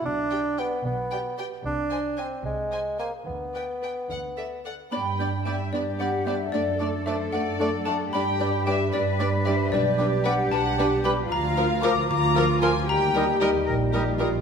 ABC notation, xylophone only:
X:1
M:6/8
L:1/8
Q:3/8=75
K:G
V:1 name="Xylophone"
z6 | z6 | z6 | b2 g d f e |
d2 e f2 a | b2 g d2 e | d2 f a2 b | [K:Eb] b2 d' d'2 c' |
b2 g z3 |]